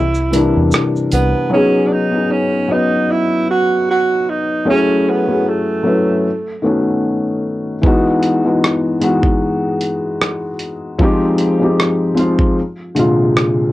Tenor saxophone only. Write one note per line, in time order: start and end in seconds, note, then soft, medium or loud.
0.00 0.70 E4 medium
1.13 1.49 B3 medium
1.53 1.88 C#4 medium
1.87 1.94 D4 medium
1.92 2.33 D#4 medium
2.31 2.74 C#4 medium
2.72 3.12 D#4 medium
3.11 3.50 E4 medium
3.50 3.86 F#4 loud
3.90 4.31 F#4 medium
4.30 4.68 D#4 medium
4.69 5.11 C#4 medium
5.10 5.50 B3 medium
5.48 6.66 A3 medium